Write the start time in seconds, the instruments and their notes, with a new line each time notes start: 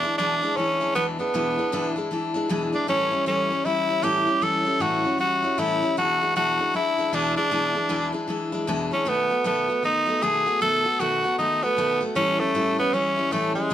Already playing: tenor saxophone D4
0.03 steel-string acoustic guitar E3 G#3 D4 E4
0.18 steel-string acoustic guitar E2 B2 E3 G#3 D4 E4, tenor saxophone D4
0.42 steel-string acoustic guitar E3 G#3 D4 E4
0.56 steel-string acoustic guitar E3 G#3 D4 E4, tenor saxophone C#4
0.80 steel-string acoustic guitar E3 G#3 D4 E4
0.95 steel-string acoustic guitar E2 B2 E3 G#3 D4 E4, tenor saxophone B3
1.19 steel-string acoustic guitar E3 G#3 D4 E4, tenor saxophone B3
1.34 steel-string acoustic guitar E2 B2 E3 G#3 D4 E4
1.58 steel-string acoustic guitar E3 G#3 D4 E4
1.72 steel-string acoustic guitar E2 B2 E3 G#3 D4 E4
1.96 steel-string acoustic guitar E3 G#3 D4 E4
2.11 steel-string acoustic guitar E3 G#3 D4 E4
2.34 steel-string acoustic guitar E3 G#3 D4 E4
2.49 steel-string acoustic guitar E2 B2 E3 G#3 D4 E4
2.72 steel-string acoustic guitar E3 G#3 D4 E4, tenor saxophone D4
2.87 steel-string acoustic guitar A2 E3 G3 C#4 E4, tenor saxophone C#4
3.11 steel-string acoustic guitar G3 C#4 E4
3.26 steel-string acoustic guitar A2 E3 G3 C#4 E4, tenor saxophone C#4
3.50 steel-string acoustic guitar G3 C#4 E4
3.65 steel-string acoustic guitar E3 G3 C#4 E4, tenor saxophone E4
3.88 steel-string acoustic guitar G3 C#4 E4
4.02 steel-string acoustic guitar A2 E3 G3 C#4 E4, tenor saxophone G4
4.26 steel-string acoustic guitar G3 C#4 E4
4.41 steel-string acoustic guitar A2 E3 G3 C#4 E4, tenor saxophone A4
4.65 steel-string acoustic guitar G3 C#4 E4
4.80 steel-string acoustic guitar A2 E3 G3 C#4 E4, tenor saxophone F#4
5.04 steel-string acoustic guitar G3 C#4 E4
5.18 steel-string acoustic guitar E3 G3 C#4 E4, tenor saxophone F#4
5.43 steel-string acoustic guitar G3 C#4 E4
5.58 steel-string acoustic guitar A2 E3 G3 C#4 E4, tenor saxophone E4
5.82 steel-string acoustic guitar G3 C#4 E4
5.97 steel-string acoustic guitar E2 B2 E3 G#3 D4 E4, tenor saxophone F#4
6.21 steel-string acoustic guitar E3 G#3 D4 E4
6.36 steel-string acoustic guitar E2 B2 E3 G#3 D4 E4, tenor saxophone F#4
6.59 steel-string acoustic guitar E3 G#3 D4 E4
6.74 steel-string acoustic guitar E3 G#3 D4 E4, tenor saxophone E4
6.98 steel-string acoustic guitar E3 G#3 D4 E4
7.13 steel-string acoustic guitar E2 B2 E3 G#3 D4 E4, tenor saxophone D4
7.36 steel-string acoustic guitar E3 G#3 D4 E4, tenor saxophone D4
7.51 steel-string acoustic guitar E2 B2 E3 G#3 D4 E4
7.75 steel-string acoustic guitar E3 G#3 D4 E4
7.89 steel-string acoustic guitar E2 B2 E3 G#3 D4 E4
8.12 steel-string acoustic guitar E3 G#3 D4 E4
8.28 steel-string acoustic guitar E3 G#3 D4 E4
8.52 steel-string acoustic guitar E3 G#3 D4 E4
8.67 steel-string acoustic guitar E2 B2 E3 G#3 D4 E4
8.92 steel-string acoustic guitar E3 G#3 D4 E4, tenor saxophone C#4
9.05 steel-string acoustic guitar B2 D#3 A3 B3 F#4, tenor saxophone B3
9.30 steel-string acoustic guitar A3 B3 F#4
9.44 steel-string acoustic guitar B2 D#3 A3 B3 F#4, tenor saxophone B3
9.68 steel-string acoustic guitar A3 B3 F#4
9.83 steel-string acoustic guitar D#3 A3 B3 F#4, tenor saxophone D#4
10.06 steel-string acoustic guitar A3 B3 F#4
10.22 steel-string acoustic guitar B2 D#3 A3 B3 F#4, tenor saxophone G#4
10.46 steel-string acoustic guitar A3 B3 F#4
10.61 steel-string acoustic guitar B2 D#3 A3 B3 F#4, tenor saxophone A4
10.85 steel-string acoustic guitar A3 B3 F#4
11.00 steel-string acoustic guitar B2 D#3 A3 B3 F#4, tenor saxophone F#4
11.24 steel-string acoustic guitar A3 B3 F#4
11.38 steel-string acoustic guitar D#3 A3 B3 F#4, tenor saxophone D#4
11.63 steel-string acoustic guitar A3 B3 F#4, tenor saxophone B3
11.77 steel-string acoustic guitar B2 D#3 A3 B3 F#4
12.01 steel-string acoustic guitar A3 B3 F#4
12.15 steel-string acoustic guitar A2 E3 G3 C#4 E4, tenor saxophone C#4
12.39 steel-string acoustic guitar G3 C#4 E4, tenor saxophone A3
12.55 steel-string acoustic guitar A2 E3 G3 C#4 E4
12.78 steel-string acoustic guitar G3 C#4 E4, tenor saxophone B3
12.93 steel-string acoustic guitar E3 G3 C#4 E4, tenor saxophone C#4
13.16 steel-string acoustic guitar G3 C#4 E4
13.31 steel-string acoustic guitar A2 E3 G3 C#4 E4, tenor saxophone A3
13.55 steel-string acoustic guitar G3 C#4 E4, tenor saxophone G#3
13.70 steel-string acoustic guitar E2 B2 E3